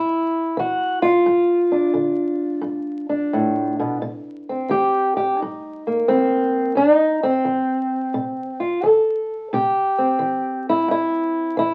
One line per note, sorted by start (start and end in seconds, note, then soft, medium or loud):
0.00 0.52 G2 medium
0.00 0.57 E4 medium
0.57 1.21 E3 medium
0.57 1.02 F#4 medium
1.02 4.01 F4 medium
1.26 1.90 G2 medium
1.72 3.08 D4 soft
1.94 2.58 D3 medium
2.61 3.26 G2 medium
3.09 3.98 D4 soft
3.33 3.78 A2 medium
3.79 4.01 B2 medium
4.02 4.66 C3 medium
4.49 5.38 C4 soft
4.69 5.34 E3 medium
4.69 5.15 G4 medium
5.17 5.39 G4 medium
5.38 6.05 G2 medium
5.38 6.07 D#4 medium
5.87 6.75 A#3 soft
6.08 6.72 E3 medium
6.08 6.76 C4 medium
6.75 7.40 F2 medium
6.75 7.22 D#4 medium
7.23 8.60 C4 loud
7.45 8.09 F3 medium
8.14 8.78 C3 medium
8.60 8.85 F4 soft
8.83 9.47 F3 medium
8.83 9.53 A4 medium
9.53 10.17 C3 medium
9.53 10.67 G4 medium
9.98 11.74 C4 soft
10.19 10.84 E3 medium
10.69 10.90 E4 medium
10.88 11.53 G2 medium
10.88 11.58 E4 medium
11.57 11.74 E3 medium
11.57 11.74 E4 medium